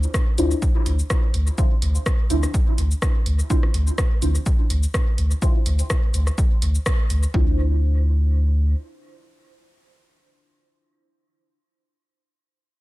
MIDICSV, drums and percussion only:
0, 0, Header, 1, 2, 480
1, 0, Start_track
1, 0, Key_signature, -1, "minor"
1, 0, Tempo, 480000
1, 1581, Time_signature, 4, 2, 24, 8
1, 12806, End_track
2, 0, Start_track
2, 0, Title_t, "Drums"
2, 30, Note_on_c, 9, 69, 39
2, 130, Note_off_c, 9, 69, 0
2, 141, Note_on_c, 9, 36, 106
2, 142, Note_on_c, 9, 37, 79
2, 142, Note_on_c, 9, 69, 50
2, 241, Note_off_c, 9, 36, 0
2, 242, Note_off_c, 9, 37, 0
2, 242, Note_off_c, 9, 69, 0
2, 381, Note_on_c, 9, 42, 74
2, 381, Note_on_c, 9, 69, 46
2, 481, Note_off_c, 9, 42, 0
2, 481, Note_off_c, 9, 69, 0
2, 511, Note_on_c, 9, 69, 38
2, 611, Note_off_c, 9, 69, 0
2, 621, Note_on_c, 9, 36, 120
2, 622, Note_on_c, 9, 69, 47
2, 721, Note_off_c, 9, 36, 0
2, 722, Note_off_c, 9, 69, 0
2, 861, Note_on_c, 9, 42, 85
2, 861, Note_on_c, 9, 69, 27
2, 961, Note_off_c, 9, 42, 0
2, 961, Note_off_c, 9, 69, 0
2, 990, Note_on_c, 9, 69, 39
2, 1090, Note_off_c, 9, 69, 0
2, 1101, Note_on_c, 9, 36, 111
2, 1101, Note_on_c, 9, 37, 78
2, 1101, Note_on_c, 9, 69, 50
2, 1201, Note_off_c, 9, 36, 0
2, 1201, Note_off_c, 9, 37, 0
2, 1201, Note_off_c, 9, 69, 0
2, 1340, Note_on_c, 9, 42, 73
2, 1440, Note_off_c, 9, 42, 0
2, 1471, Note_on_c, 9, 69, 39
2, 1571, Note_off_c, 9, 69, 0
2, 1581, Note_on_c, 9, 36, 120
2, 1581, Note_on_c, 9, 69, 48
2, 1681, Note_off_c, 9, 36, 0
2, 1681, Note_off_c, 9, 69, 0
2, 1821, Note_on_c, 9, 42, 84
2, 1921, Note_off_c, 9, 42, 0
2, 1951, Note_on_c, 9, 69, 39
2, 2051, Note_off_c, 9, 69, 0
2, 2061, Note_on_c, 9, 36, 100
2, 2061, Note_on_c, 9, 37, 83
2, 2061, Note_on_c, 9, 69, 46
2, 2161, Note_off_c, 9, 36, 0
2, 2161, Note_off_c, 9, 37, 0
2, 2161, Note_off_c, 9, 69, 0
2, 2301, Note_on_c, 9, 42, 71
2, 2301, Note_on_c, 9, 69, 45
2, 2401, Note_off_c, 9, 42, 0
2, 2401, Note_off_c, 9, 69, 0
2, 2431, Note_on_c, 9, 37, 37
2, 2431, Note_on_c, 9, 69, 39
2, 2531, Note_off_c, 9, 37, 0
2, 2531, Note_off_c, 9, 69, 0
2, 2541, Note_on_c, 9, 36, 114
2, 2541, Note_on_c, 9, 69, 48
2, 2641, Note_off_c, 9, 36, 0
2, 2641, Note_off_c, 9, 69, 0
2, 2781, Note_on_c, 9, 42, 81
2, 2781, Note_on_c, 9, 69, 27
2, 2881, Note_off_c, 9, 42, 0
2, 2881, Note_off_c, 9, 69, 0
2, 2911, Note_on_c, 9, 69, 40
2, 3011, Note_off_c, 9, 69, 0
2, 3021, Note_on_c, 9, 36, 105
2, 3021, Note_on_c, 9, 37, 81
2, 3021, Note_on_c, 9, 69, 49
2, 3121, Note_off_c, 9, 36, 0
2, 3121, Note_off_c, 9, 37, 0
2, 3121, Note_off_c, 9, 69, 0
2, 3261, Note_on_c, 9, 42, 72
2, 3361, Note_off_c, 9, 42, 0
2, 3391, Note_on_c, 9, 69, 38
2, 3491, Note_off_c, 9, 69, 0
2, 3501, Note_on_c, 9, 36, 121
2, 3501, Note_on_c, 9, 69, 47
2, 3601, Note_off_c, 9, 36, 0
2, 3601, Note_off_c, 9, 69, 0
2, 3631, Note_on_c, 9, 37, 37
2, 3731, Note_off_c, 9, 37, 0
2, 3741, Note_on_c, 9, 42, 81
2, 3841, Note_off_c, 9, 42, 0
2, 3871, Note_on_c, 9, 69, 39
2, 3971, Note_off_c, 9, 69, 0
2, 3981, Note_on_c, 9, 36, 100
2, 3981, Note_on_c, 9, 37, 84
2, 3981, Note_on_c, 9, 69, 48
2, 4081, Note_off_c, 9, 36, 0
2, 4081, Note_off_c, 9, 37, 0
2, 4081, Note_off_c, 9, 69, 0
2, 4221, Note_on_c, 9, 42, 67
2, 4221, Note_on_c, 9, 69, 46
2, 4321, Note_off_c, 9, 42, 0
2, 4321, Note_off_c, 9, 69, 0
2, 4351, Note_on_c, 9, 69, 40
2, 4451, Note_off_c, 9, 69, 0
2, 4461, Note_on_c, 9, 36, 110
2, 4461, Note_on_c, 9, 69, 49
2, 4561, Note_off_c, 9, 36, 0
2, 4561, Note_off_c, 9, 69, 0
2, 4702, Note_on_c, 9, 42, 82
2, 4702, Note_on_c, 9, 69, 28
2, 4802, Note_off_c, 9, 42, 0
2, 4802, Note_off_c, 9, 69, 0
2, 4831, Note_on_c, 9, 69, 42
2, 4931, Note_off_c, 9, 69, 0
2, 4941, Note_on_c, 9, 36, 99
2, 4942, Note_on_c, 9, 37, 84
2, 4942, Note_on_c, 9, 69, 51
2, 5041, Note_off_c, 9, 36, 0
2, 5042, Note_off_c, 9, 37, 0
2, 5042, Note_off_c, 9, 69, 0
2, 5180, Note_on_c, 9, 42, 72
2, 5280, Note_off_c, 9, 42, 0
2, 5310, Note_on_c, 9, 69, 41
2, 5410, Note_off_c, 9, 69, 0
2, 5420, Note_on_c, 9, 36, 117
2, 5420, Note_on_c, 9, 69, 52
2, 5520, Note_off_c, 9, 36, 0
2, 5520, Note_off_c, 9, 69, 0
2, 5660, Note_on_c, 9, 42, 82
2, 5660, Note_on_c, 9, 69, 28
2, 5760, Note_off_c, 9, 42, 0
2, 5760, Note_off_c, 9, 69, 0
2, 5790, Note_on_c, 9, 42, 34
2, 5790, Note_on_c, 9, 69, 42
2, 5890, Note_off_c, 9, 42, 0
2, 5890, Note_off_c, 9, 69, 0
2, 5900, Note_on_c, 9, 36, 102
2, 5900, Note_on_c, 9, 37, 82
2, 5900, Note_on_c, 9, 69, 52
2, 5999, Note_off_c, 9, 37, 0
2, 5999, Note_off_c, 9, 69, 0
2, 6000, Note_off_c, 9, 36, 0
2, 6141, Note_on_c, 9, 42, 69
2, 6141, Note_on_c, 9, 69, 47
2, 6241, Note_off_c, 9, 42, 0
2, 6241, Note_off_c, 9, 69, 0
2, 6269, Note_on_c, 9, 37, 39
2, 6269, Note_on_c, 9, 69, 41
2, 6369, Note_off_c, 9, 37, 0
2, 6369, Note_off_c, 9, 69, 0
2, 6380, Note_on_c, 9, 36, 114
2, 6381, Note_on_c, 9, 69, 52
2, 6480, Note_off_c, 9, 36, 0
2, 6481, Note_off_c, 9, 69, 0
2, 6621, Note_on_c, 9, 42, 82
2, 6621, Note_on_c, 9, 69, 29
2, 6721, Note_off_c, 9, 42, 0
2, 6721, Note_off_c, 9, 69, 0
2, 6749, Note_on_c, 9, 69, 42
2, 6849, Note_off_c, 9, 69, 0
2, 6860, Note_on_c, 9, 36, 103
2, 6860, Note_on_c, 9, 37, 90
2, 6860, Note_on_c, 9, 69, 52
2, 6960, Note_off_c, 9, 36, 0
2, 6960, Note_off_c, 9, 37, 0
2, 6960, Note_off_c, 9, 69, 0
2, 7100, Note_on_c, 9, 42, 73
2, 7100, Note_on_c, 9, 69, 30
2, 7200, Note_off_c, 9, 42, 0
2, 7200, Note_off_c, 9, 69, 0
2, 7230, Note_on_c, 9, 69, 41
2, 7330, Note_off_c, 9, 69, 0
2, 7341, Note_on_c, 9, 36, 121
2, 7441, Note_off_c, 9, 36, 0
2, 12806, End_track
0, 0, End_of_file